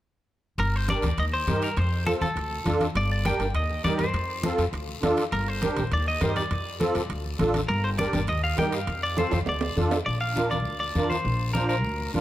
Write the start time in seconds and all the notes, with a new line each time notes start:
0.58 G1 A#4, high conga, high timbale, long guiro
0.76 C5
0.88 D4 G4 A#4 D5, high conga, high timbale, short guiro
1.02 D2, high conga, high timbale, short guiro
1.18 D#2 D#5, high timbale, long guiro
1.33 C5, high conga
1.47 G2 D#4 G4 A#4, high conga, high timbale, short guiro
1.62 A#4, high timbale, short guiro
1.77 F2 C5, high conga, high timbale, long guiro
2.06 C4 F4 A4, high conga, high timbale, short guiro
2.21 F2 A4, high conga, high timbale, short guiro
2.36 D2, high timbale, long guiro
2.51 high conga
2.65 F2 D4 F4 A4, high conga, high timbale, short guiro
2.81 high conga, high timbale, short guiro
2.95 G1 D5, high conga, high timbale, long guiro
3.12 D5
3.25 D4 G4 A#4 G5, high conga, high timbale, short guiro
3.39 G1, high timbale, short guiro
3.54 D#2 D#5, high timbale, long guiro
3.70 high conga
3.84 G2 D#4 G4 A#4 D5, high conga, high timbale, short guiro
3.98 C5, high conga, high timbale, short guiro
4.13 F2, high conga, high timbale, long guiro
4.43 C4 F4 A4, high conga, high timbale, short guiro
4.58 F2, high timbale, short guiro
4.73 D2, high timbale, long guiro
4.88 high conga
5.02 F2 D4 F4 A4, high conga, high timbale, low timbale, short guiro
5.17 high timbale, short guiro
5.32 G1 A#4, high conga, high timbale, long guiro
5.48 C5
5.62 D4 G4 A#4, high conga, high timbale, short guiro
5.77 A#1, high conga, high timbale, short guiro
5.92 D#2 D5, high timbale, long guiro
6.07 D#5, high conga
6.21 G2 D#4 G4 A#4 C5, high conga, high timbale, low timbale, short guiro
6.36 D5, high conga, high timbale, short guiro
6.51 F2, high conga, high timbale, long guiro
6.80 C4 F4 A4, high conga, high timbale, short guiro
6.95 F2, high timbale, short guiro
7.09 D2, high timbale, long guiro
7.25 high conga
7.39 A1 D4 F4 A4, high conga, high timbale, short guiro
7.54 high conga, high timbale, short guiro
7.68 G1 A#4, high conga, high timbale
7.84 C5
7.98 D4 G4 A#4 D5, high conga, high timbale, short guiro
8.13 G1, high conga, high timbale, short guiro
8.27 D#2 D#5, high timbale, long guiro
8.44 F5, high conga
8.57 G2 D#4 G4 A#4 G5, high conga, high timbale, low timbale, short guiro
8.72 F5, high timbale, short guiro
8.87 F2, high conga, high timbale, long guiro
9.03 D5
9.17 C4 F4 A4 C5, high conga, high timbale, short guiro
9.31 F2 C5, high conga, high timbale, short guiro
9.46 D2 D5, low timbale, long guiro
9.61 high conga, low timbale
9.76 F2 D4 F4 A4, high conga, short guiro
9.91 low timbale, short guiro
10.06 A#1 D5, high conga, long guiro
10.21 F5
10.36 D4 F4 A#4, high conga, short guiro
10.50 D5, high conga, short guiro
10.65 D2, long guiro
10.80 D5, high conga
10.95 F2 D4 F4 A#4, high conga, short guiro
11.10 C5, high conga, short guiro
11.25 A#1, high conga, long guiro
11.53 D4 F4 A#4 C5, high conga, short guiro
11.69 A#4, short guiro
11.84 D2, long guiro
12.00 high conga
12.14 F2 D4 F4 A#4, high conga, short guiro